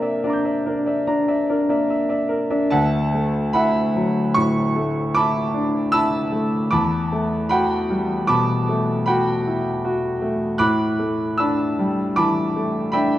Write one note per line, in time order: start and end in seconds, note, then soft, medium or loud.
0.00 2.67 C3 medium
0.00 1.69 A#3 soft
0.00 0.24 D4 soft
0.00 0.66 A#4 soft
0.00 0.02 D5 soft
0.00 0.20 D5 soft
0.00 0.02 E5 soft
0.00 0.20 E5 soft
0.24 0.56 D4 soft
0.24 0.44 D5 soft
0.24 0.43 E5 soft
0.24 1.06 A#5 soft
0.29 2.71 D6 soft
0.29 2.73 G6 soft
0.45 0.63 D5 soft
0.45 0.62 E5 soft
0.66 0.98 D4 soft
0.66 0.98 A#4 soft
0.86 1.04 D5 soft
0.86 1.05 E5 soft
1.07 1.40 D4 soft
1.07 1.40 A#5 medium
1.28 1.46 D5 soft
1.28 1.46 E5 medium
1.50 1.81 D4 soft
1.50 1.81 A#4 soft
1.69 2.01 A#3 soft
1.69 1.87 D5 soft
1.69 1.87 E5 soft
1.90 2.09 E5 medium
2.09 2.28 D5 soft
2.09 2.28 E5 medium
2.29 2.63 A#4 soft
2.50 2.71 D4 soft
2.50 2.69 D5 soft
2.50 2.69 E5 soft
2.70 6.69 D2 medium
2.70 3.51 E5 medium
2.70 3.51 F#5 medium
2.70 3.54 A5 medium
3.14 3.80 A3 soft
3.53 4.19 E4 medium
3.53 4.31 E5 medium
3.53 4.31 F#5 medium
3.53 4.35 B5 medium
3.96 4.59 F#3 soft
4.35 5.00 A2 soft
4.35 5.15 C#6 loud
4.76 5.39 A3 soft
5.14 5.79 E4 medium
5.14 5.90 A5 medium
5.14 5.90 B5 medium
5.14 5.94 D6 loud
5.54 5.94 D4 soft
5.92 6.57 E4 medium
5.92 6.69 A5 medium
5.92 6.68 B5 medium
5.92 6.72 E6 loud
6.32 6.72 A3 soft
6.71 10.55 E2 medium
6.71 7.47 A5 medium
6.71 7.47 B5 medium
6.71 7.51 D6 medium
7.12 7.75 A3 soft
7.49 8.14 F#4 medium
7.49 8.25 F#5 medium
7.49 8.25 G5 medium
7.49 8.27 B5 medium
7.90 8.53 G3 soft
8.27 8.91 B2 soft
8.27 9.03 A5 medium
8.27 9.03 B5 medium
8.27 9.06 D6 loud
8.69 9.31 A3 medium
9.06 9.69 F#4 medium
9.06 10.18 F#5 medium
9.06 10.18 G5 medium
9.06 10.21 B5 medium
9.47 9.85 E4 soft
9.85 10.45 F#4 medium
10.22 10.60 A3 medium
10.58 13.19 A2 medium
10.58 11.34 B5 medium
10.58 11.34 D6 medium
10.58 11.37 F#6 loud
10.99 11.62 A3 medium
11.38 12.01 D4 medium
11.38 12.12 A5 medium
11.38 12.13 B5 medium
11.38 12.16 E6 medium
11.79 12.40 G3 soft
12.16 12.78 E3 medium
12.16 12.90 A5 medium
12.16 12.90 B5 medium
12.16 12.93 D6 loud
12.56 13.18 A3 soft
12.92 13.19 D4 medium
12.92 13.19 E5 medium
12.92 13.19 G5 medium
12.92 13.19 B5 medium